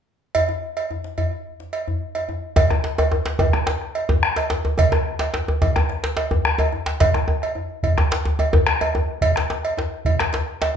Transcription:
0.35 cowbell medium
0.35 djembe bass medium
0.49 djembe slap soft
0.49 djembe tone medium
0.63 djembe slap soft
0.77 cowbell soft
0.91 djembe tone medium
1.04 djembe slap soft
1.18 cowbell soft
1.18 djembe bass medium
1.60 djembe slap soft
1.73 cowbell soft
1.88 djembe tone medium
1.88 djembe bass medium
2.01 djembe slap soft
2.15 cowbell soft
2.15 djembe slap medium
2.29 djembe tone medium
2.56 bombo low medium
2.56 cowbell medium
2.56 djembe slap medium
2.56 djembe tone loud
2.56 djembe bass medium
2.70 bombo rim medium
2.70 djembe tone medium
2.84 djembe slap medium
2.98 bombo rim soft
2.98 cowbell soft
2.98 djembe tone medium
3.12 djembe tone medium
3.26 djembe slap medium
3.26 djembe slap soft
3.39 bombo low medium
3.39 cowbell soft
3.39 djembe tone medium
3.39 djembe bass medium
3.53 bombo rim medium
3.53 djembe slap soft
3.53 djembe tone medium
3.53 djembe tone soft
3.67 djembe slap medium
3.81 bombo rim soft
3.81 djembe slap soft
3.95 cowbell soft
4.09 bombo low medium
4.09 djembe slap soft
4.09 djembe tone medium
4.09 djembe tone soft
4.09 djembe bass medium
4.23 bombo rim medium
4.36 cowbell soft
4.36 djembe slap medium
4.50 djembe slap medium
4.50 djembe tone medium
4.65 djembe tone medium
4.78 bombo low medium
4.78 cowbell medium
4.78 djembe slap medium
4.78 djembe tone medium
4.78 djembe bass medium
4.92 bombo rim medium
4.92 djembe tone medium
4.92 djembe tone soft
5.19 bombo rim soft
5.19 cowbell soft
5.19 djembe slap medium
5.34 djembe slap medium
5.34 djembe tone medium
5.48 djembe slap soft
5.48 djembe tone medium
5.62 bombo low medium
5.62 cowbell soft
5.62 djembe tone medium
5.62 djembe bass medium
5.76 bombo rim medium
5.76 djembe slap soft
5.76 djembe tone soft
5.76 djembe tone medium
5.89 bombo rim soft
5.89 djembe slap medium
6.04 bombo rim soft
6.04 djembe slap soft
6.04 djembe slap medium
6.17 cowbell soft
6.17 djembe slap medium
6.31 djembe slap soft
6.31 djembe tone medium
6.31 djembe bass medium
6.45 bombo rim medium
6.45 djembe tone medium
6.58 cowbell soft
6.58 djembe tone medium
6.72 djembe tone medium
6.86 djembe slap medium
7.00 bombo low medium
7.00 cowbell medium
7.00 djembe slap medium
7.00 djembe bass medium
7.14 bombo rim medium
7.14 djembe tone medium
7.28 djembe tone medium
7.42 bombo rim soft
7.42 cowbell soft
7.55 djembe tone medium
7.70 djembe slap soft
7.83 bombo low medium
7.83 cowbell soft
7.83 djembe bass medium
7.97 bombo rim medium
7.97 djembe slap soft
7.97 djembe tone soft
7.97 djembe tone loud
8.11 bombo rim soft
8.11 djembe slap medium
8.25 bombo rim soft
8.25 djembe slap soft
8.25 djembe tone medium
8.39 cowbell soft
8.39 djembe tone medium
8.53 bombo low medium
8.53 djembe slap soft
8.53 djembe tone loud
8.53 djembe tone medium
8.53 djembe bass medium
8.66 bombo rim medium
8.66 djembe slap medium
8.81 cowbell medium
8.81 djembe tone medium
8.95 djembe tone medium
9.21 bombo low medium
9.21 cowbell medium
9.21 djembe slap medium
9.21 djembe bass medium
9.36 bombo rim medium
9.36 djembe slap soft
9.36 djembe slap medium
9.36 djembe tone soft
9.50 djembe slap medium
9.65 cowbell soft
9.77 bombo rim soft
9.77 djembe slap medium
9.77 djembe tone medium
9.92 djembe slap soft
10.05 bombo low medium
10.05 cowbell soft
10.05 djembe bass medium
10.19 bombo rim medium
10.19 djembe slap medium
10.19 djembe tone medium
10.33 djembe slap medium
10.61 bombo rim soft
10.61 cowbell medium
10.61 djembe slap soft
10.61 djembe slap medium

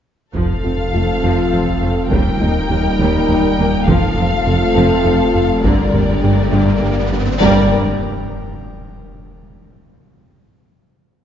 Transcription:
0.34 0.43 F1 soft
0.34 2.13 F1 medium
0.34 0.43 F2 soft
0.34 0.53 F2 medium
0.34 2.08 C3 soft
0.34 0.62 F3 soft
0.34 0.52 F3 medium
0.34 2.08 F3 soft
0.34 2.08 F3 medium
0.34 2.08 A3 soft
0.34 2.08 C4 medium
0.34 2.07 F4 soft
0.34 2.08 F4 medium
0.34 2.08 A4 soft
0.34 2.08 A4 medium
0.34 2.08 F5 soft
0.34 taiko soft
0.64 0.73 F1 soft
0.64 0.72 F2 soft
0.64 0.82 F2 soft
0.64 0.73 C4 soft
0.64 0.82 F4 soft
0.94 1.02 F1 soft
0.94 1.12 F2 medium
0.94 1.02 F2 soft
0.94 1.02 A3 soft
0.94 1.12 F4 soft
1.23 1.31 F1 medium
1.23 1.31 F2 medium
1.23 1.41 F2 medium
1.23 1.50 F3 medium
1.23 1.41 F3 medium
1.52 1.61 F1 soft
1.52 1.70 F2 soft
1.52 1.61 F2 soft
1.52 1.61 C4 soft
1.52 1.70 F4 soft
1.68 taiko soft
1.82 1.90 F1 soft
1.82 1.90 F2 soft
1.82 2.00 F2 medium
1.82 1.99 A3 medium
1.82 1.90 A3 soft
2.10 3.89 D#1 medium
2.10 2.19 D#2 medium
2.10 2.20 D#2 medium
2.10 2.29 D#2 medium
2.10 3.84 A#2 medium
2.10 2.29 D#3 medium
2.10 3.88 G3 medium
2.10 2.39 G3 medium
2.10 3.85 G3 medium
2.10 3.88 A#3 medium
2.10 3.84 A#3 medium
2.10 3.88 D#4 medium
2.10 3.84 D#4 medium
2.10 3.88 A#4 soft
2.10 3.88 A#4 medium
2.10 3.84 G5 soft
2.10 taiko medium
2.41 2.49 D#2 soft
2.41 2.59 D#2 medium
2.41 2.58 D#4 medium
2.41 2.49 D#4 soft
2.70 2.78 D#2 soft
2.70 2.78 D#2 medium
2.70 2.88 D#2 medium
2.70 2.78 A#3 soft
2.70 2.88 D#4 medium
2.99 3.17 D#2 medium
2.99 3.08 D#2 medium
2.99 3.17 D#3 medium
2.99 3.27 G3 medium
3.29 3.46 D#2 medium
3.29 3.37 D#2 medium
3.29 3.47 D#4 medium
3.29 3.38 D#4 medium
3.58 3.76 D#2 medium
3.58 3.67 D#2 medium
3.58 3.76 G3 medium
3.58 3.67 A#3 medium
3.87 5.66 F1 medium
3.87 3.96 F1 medium
3.87 4.05 F2 medium
3.87 3.96 F2 medium
3.87 5.61 C3 medium
3.87 4.15 F3 medium
3.87 5.61 F3 medium
3.87 4.06 F3 medium
3.87 5.64 A3 medium
3.87 5.61 A3 medium
3.87 5.64 C4 medium
3.87 5.64 F4 medium
3.87 5.60 F4 medium
3.87 5.64 A4 medium
3.87 5.61 A4 medium
3.87 5.61 F5 medium
3.87 taiko medium
3.87 riser medium
4.17 4.25 F1 soft
4.17 4.35 F2 medium
4.17 4.26 F2 medium
4.17 4.25 C4 soft
4.17 4.35 F4 medium
4.46 4.55 F1 medium
4.46 4.64 F2 medium
4.46 4.56 F2 medium
4.46 4.55 A3 soft
4.46 4.64 F4 medium
4.75 4.84 F1 medium
4.75 4.94 F2 medium
4.75 4.85 F2 medium
4.75 5.03 F3 medium
4.75 4.94 F3 medium
5.05 5.13 F1 soft
5.05 5.23 F2 medium
5.05 5.14 F2 soft
5.05 5.13 C4 soft
5.05 5.23 F4 medium
5.34 5.43 F1 soft
5.34 5.52 F2 medium
5.34 5.43 F2 soft
5.34 5.43 A3 soft
5.34 5.53 A3 medium
5.63 5.72 G1 medium
5.63 7.41 G1 medium
5.63 5.82 G2 medium
5.63 5.73 G2 medium
5.63 5.92 D3 medium
5.63 7.08 D3 soft
5.63 7.40 G3 medium
5.63 5.82 G3 medium
5.63 7.08 G3 soft
5.63 7.07 A#3 soft
5.63 7.07 D4 soft
5.63 7.40 D4 medium
5.63 7.41 G4 medium
5.63 7.41 A#4 medium
5.63 7.18 A#4 soft
5.63 7.18 D5 soft
5.63 taiko medium
5.94 6.02 G1 soft
5.94 6.11 G2 medium
5.94 6.02 G2 soft
5.94 6.02 A#3 soft
5.94 6.11 G4 medium
5.94 taiko low soft
6.23 6.31 G1 soft
6.23 6.41 G2 medium
6.23 6.31 G2 soft
6.23 6.31 G3 soft
6.23 6.41 G4 medium
6.52 6.60 G1 medium
6.52 6.70 G2 medium
6.52 6.61 G2 medium
6.52 6.80 D3 soft
6.52 6.71 G3 medium
6.82 6.90 G1 soft
6.82 6.99 G2 medium
6.82 6.90 G2 soft
6.82 6.91 A#3 soft
6.82 7.00 G4 medium
7.11 7.19 G1 soft
7.11 7.20 G2 soft
7.11 7.30 G2 medium
7.11 7.20 G3 soft
7.11 7.29 A#3 medium
7.40 7.74 G1 medium
7.40 7.74 G2 medium
7.40 7.66 D3 medium
7.40 7.74 G3 medium
7.40 7.67 G3 medium
7.40 7.66 A#3 medium
7.40 7.74 A#3 medium
7.40 7.66 D4 medium
7.40 7.74 D4 medium
7.40 7.74 G4 medium
7.40 7.74 A#4 medium
7.40 7.74 D5 medium
7.40 impact medium

